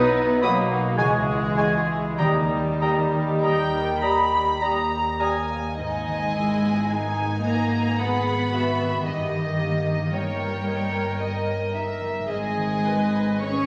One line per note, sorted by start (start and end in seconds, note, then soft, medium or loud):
0.00 0.85 B1 medium
0.00 1.03 B2 medium
0.00 1.03 F#3 soft
0.00 0.43 B3 medium
0.00 1.03 B3 soft
0.00 0.40 D#4 medium
0.00 0.42 D#4 medium
0.00 1.03 D#4 soft
0.00 0.43 E4 medium
0.00 1.03 F#4 medium
0.00 0.43 B4 medium
0.00 0.70 F#5 medium
0.17 1.03 B4 medium
0.41 0.98 F#3 medium
0.41 0.59 F#3 soft
0.41 0.99 A#3 medium
0.41 0.97 A#3 medium
0.41 0.98 D#4 medium
0.41 0.99 F#4 medium
0.41 1.03 D#5 medium
0.41 0.58 B5 medium
0.41 0.55 D#6 medium
0.41 0.51 D#6 soft
0.71 1.03 F#5 soft
0.98 2.04 C#2 medium
0.98 2.24 C#3 soft
0.98 2.19 E3 medium
0.98 2.19 G#3 medium
0.98 1.14 G#3 soft
0.98 1.07 E4 medium
0.98 2.19 G#4 medium
0.98 1.14 G#5 soft
0.98 1.08 G#5 medium
0.98 1.12 C#6 soft
1.07 1.15 F#4 medium
1.15 1.23 E4 medium
1.25 2.24 G#3 soft
1.25 1.33 F#4 medium
1.33 1.41 E4 soft
1.42 1.50 F#4 medium
1.51 1.59 E4 medium
1.57 1.74 G#3 soft
1.57 2.24 C#4 soft
1.57 1.67 F#4 medium
1.57 1.73 G#5 soft
1.57 1.66 G#5 soft
1.57 1.72 C#6 soft
1.68 1.76 E4 soft
1.78 1.85 F#4 medium
1.86 2.20 E4 medium
1.86 2.24 E4 soft
2.19 3.28 D#2 medium
2.19 4.61 D#3 medium
2.19 3.98 D#3 medium
2.19 5.83 D#3 soft
2.19 2.35 G3 soft
2.19 4.57 G3 medium
2.19 4.58 D#4 medium
2.19 5.15 G4 medium
2.19 2.27 G5 soft
2.19 2.35 A#5 soft
2.19 2.33 D#6 soft
2.51 5.83 G3 soft
2.81 2.98 G3 soft
2.81 5.49 A#3 soft
2.81 2.90 G5 soft
2.81 2.98 A#5 soft
2.81 2.95 D#6 soft
3.13 3.72 A#4 soft
3.42 4.47 D#2 medium
3.42 3.58 G3 soft
3.42 4.90 G4 soft
3.42 3.98 G5 medium
3.42 3.59 A#5 soft
3.42 3.56 D#6 soft
3.73 5.20 A#4 soft
4.02 4.19 G3 soft
4.02 4.18 A#5 soft
4.02 4.61 A#5 soft
4.02 4.61 B5 medium
4.02 4.16 D#6 soft
4.33 5.83 G5 soft
4.61 5.65 D#2 soft
4.61 4.77 G3 soft
4.61 5.83 A#5 soft
4.61 5.20 A#5 medium
4.61 4.78 A#5 soft
4.61 4.76 D#6 soft
4.91 5.83 G4 soft
5.20 5.36 G3 soft
5.20 5.83 A#4 soft
5.20 5.79 G#5 soft
5.20 5.36 A#5 soft
5.20 5.33 D#6 soft
5.50 5.83 A#3 soft
5.77 9.02 G#1 soft
5.77 9.11 G#2 medium
5.77 7.40 G#3 medium
5.77 6.30 D#4 medium
5.77 6.86 D#5 soft
5.77 7.40 G#5 medium
6.07 8.79 D#3 soft
6.34 9.10 G#3 soft
6.34 6.89 E4 soft
6.62 7.16 B3 soft
6.89 7.99 D#4 medium
6.89 7.70 G#4 soft
6.89 8.00 G#5 soft
7.17 8.52 B3 soft
7.44 7.99 A#3 medium
7.44 7.98 B4 soft
7.44 7.99 A#5 medium
7.72 8.25 G#4 soft
7.99 9.06 B3 medium
7.99 8.53 G#4 medium
7.99 9.11 B4 soft
7.99 8.53 F#5 soft
7.99 9.06 B5 medium
8.26 9.10 G#4 soft
8.54 9.11 B3 soft
8.54 9.07 F#4 medium
8.54 9.07 E5 soft
8.80 9.11 D#3 soft
9.06 12.25 G1 medium
9.06 12.33 G2 medium
9.06 10.11 D#3 medium
9.06 10.11 G4 soft
9.06 10.11 D#5 medium
9.06 10.14 D#5 soft
9.34 11.99 G3 soft
9.60 12.33 A#3 soft
9.87 11.72 D#4 soft
10.12 11.74 G3 medium
10.12 12.25 A#4 medium
10.12 11.46 C#5 soft
10.12 10.67 C#5 soft
10.12 11.74 G5 soft
10.39 10.92 A#4 soft
10.66 11.20 C#5 soft
10.66 11.19 D#5 soft
10.93 12.33 A#4 soft
11.20 13.66 D#5 soft
11.20 11.73 D#5 soft
11.47 12.33 C#5 soft
11.73 13.14 D#4 soft
11.73 12.29 E5 medium
12.00 12.33 G3 soft
12.28 13.66 G#1 soft
12.28 13.66 G#2 soft
12.28 13.39 G#3 medium
12.28 12.85 G#4 medium
12.28 13.44 D#5 medium
12.28 13.39 G#5 medium
12.56 13.66 D#3 soft
12.86 13.66 G#3 soft
12.86 13.44 B4 medium
13.15 13.66 D#4 soft
13.43 13.66 C#4 medium
13.43 13.66 G#4 medium
13.43 13.66 B4 soft
13.43 13.66 C#5 soft
13.43 13.66 C#6 medium